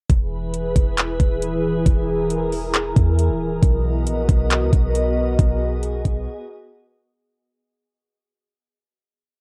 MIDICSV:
0, 0, Header, 1, 4, 480
1, 0, Start_track
1, 0, Key_signature, 5, "major"
1, 0, Tempo, 441176
1, 106, Time_signature, 4, 2, 24, 8
1, 10234, End_track
2, 0, Start_track
2, 0, Title_t, "Ambient pad"
2, 0, Program_c, 0, 92
2, 100, Note_on_c, 0, 52, 80
2, 101, Note_on_c, 0, 64, 72
2, 102, Note_on_c, 0, 68, 74
2, 102, Note_on_c, 0, 71, 89
2, 2004, Note_off_c, 0, 71, 0
2, 2026, Note_on_c, 0, 70, 87
2, 3904, Note_off_c, 0, 52, 0
2, 3905, Note_off_c, 0, 64, 0
2, 3905, Note_off_c, 0, 68, 0
2, 3926, Note_off_c, 0, 70, 0
2, 3943, Note_on_c, 0, 59, 77
2, 3943, Note_on_c, 0, 66, 74
2, 3943, Note_on_c, 0, 70, 70
2, 3943, Note_on_c, 0, 75, 87
2, 5845, Note_off_c, 0, 70, 0
2, 5862, Note_on_c, 0, 68, 74
2, 7745, Note_off_c, 0, 59, 0
2, 7746, Note_off_c, 0, 66, 0
2, 7746, Note_off_c, 0, 75, 0
2, 7764, Note_off_c, 0, 68, 0
2, 10234, End_track
3, 0, Start_track
3, 0, Title_t, "808-style bass"
3, 0, Program_c, 1, 38
3, 104, Note_on_c, 1, 28, 112
3, 796, Note_off_c, 1, 28, 0
3, 825, Note_on_c, 1, 28, 100
3, 1286, Note_off_c, 1, 28, 0
3, 1304, Note_on_c, 1, 27, 102
3, 1996, Note_off_c, 1, 27, 0
3, 2024, Note_on_c, 1, 28, 115
3, 3181, Note_off_c, 1, 28, 0
3, 3224, Note_on_c, 1, 40, 110
3, 3585, Note_on_c, 1, 27, 99
3, 3601, Note_off_c, 1, 40, 0
3, 3927, Note_off_c, 1, 27, 0
3, 3945, Note_on_c, 1, 35, 110
3, 4425, Note_on_c, 1, 34, 93
3, 4442, Note_off_c, 1, 35, 0
3, 4653, Note_off_c, 1, 34, 0
3, 4665, Note_on_c, 1, 35, 108
3, 5024, Note_on_c, 1, 37, 93
3, 5040, Note_off_c, 1, 35, 0
3, 5138, Note_off_c, 1, 37, 0
3, 5143, Note_on_c, 1, 35, 99
3, 5835, Note_off_c, 1, 35, 0
3, 5863, Note_on_c, 1, 35, 116
3, 6555, Note_off_c, 1, 35, 0
3, 6584, Note_on_c, 1, 35, 107
3, 6824, Note_off_c, 1, 35, 0
3, 10234, End_track
4, 0, Start_track
4, 0, Title_t, "Drums"
4, 105, Note_on_c, 9, 36, 118
4, 105, Note_on_c, 9, 42, 76
4, 214, Note_off_c, 9, 36, 0
4, 214, Note_off_c, 9, 42, 0
4, 585, Note_on_c, 9, 42, 74
4, 694, Note_off_c, 9, 42, 0
4, 825, Note_on_c, 9, 36, 98
4, 826, Note_on_c, 9, 42, 71
4, 934, Note_off_c, 9, 36, 0
4, 934, Note_off_c, 9, 42, 0
4, 1063, Note_on_c, 9, 42, 74
4, 1070, Note_on_c, 9, 39, 114
4, 1172, Note_off_c, 9, 42, 0
4, 1179, Note_off_c, 9, 39, 0
4, 1304, Note_on_c, 9, 36, 91
4, 1305, Note_on_c, 9, 42, 61
4, 1413, Note_off_c, 9, 36, 0
4, 1414, Note_off_c, 9, 42, 0
4, 1547, Note_on_c, 9, 42, 76
4, 1656, Note_off_c, 9, 42, 0
4, 2025, Note_on_c, 9, 36, 122
4, 2026, Note_on_c, 9, 42, 78
4, 2133, Note_off_c, 9, 36, 0
4, 2134, Note_off_c, 9, 42, 0
4, 2505, Note_on_c, 9, 42, 72
4, 2613, Note_off_c, 9, 42, 0
4, 2745, Note_on_c, 9, 46, 56
4, 2854, Note_off_c, 9, 46, 0
4, 2982, Note_on_c, 9, 42, 74
4, 2988, Note_on_c, 9, 39, 117
4, 3090, Note_off_c, 9, 42, 0
4, 3097, Note_off_c, 9, 39, 0
4, 3224, Note_on_c, 9, 36, 96
4, 3226, Note_on_c, 9, 42, 60
4, 3333, Note_off_c, 9, 36, 0
4, 3335, Note_off_c, 9, 42, 0
4, 3467, Note_on_c, 9, 42, 74
4, 3576, Note_off_c, 9, 42, 0
4, 3945, Note_on_c, 9, 36, 116
4, 3945, Note_on_c, 9, 42, 76
4, 4053, Note_off_c, 9, 36, 0
4, 4054, Note_off_c, 9, 42, 0
4, 4424, Note_on_c, 9, 42, 73
4, 4533, Note_off_c, 9, 42, 0
4, 4665, Note_on_c, 9, 36, 101
4, 4666, Note_on_c, 9, 42, 73
4, 4774, Note_off_c, 9, 36, 0
4, 4775, Note_off_c, 9, 42, 0
4, 4903, Note_on_c, 9, 42, 76
4, 4910, Note_on_c, 9, 39, 115
4, 5012, Note_off_c, 9, 42, 0
4, 5018, Note_off_c, 9, 39, 0
4, 5144, Note_on_c, 9, 36, 92
4, 5146, Note_on_c, 9, 42, 63
4, 5253, Note_off_c, 9, 36, 0
4, 5255, Note_off_c, 9, 42, 0
4, 5386, Note_on_c, 9, 42, 78
4, 5495, Note_off_c, 9, 42, 0
4, 5863, Note_on_c, 9, 36, 116
4, 5863, Note_on_c, 9, 42, 78
4, 5972, Note_off_c, 9, 36, 0
4, 5972, Note_off_c, 9, 42, 0
4, 6342, Note_on_c, 9, 42, 73
4, 6451, Note_off_c, 9, 42, 0
4, 6584, Note_on_c, 9, 36, 92
4, 6584, Note_on_c, 9, 42, 73
4, 6693, Note_off_c, 9, 36, 0
4, 6693, Note_off_c, 9, 42, 0
4, 10234, End_track
0, 0, End_of_file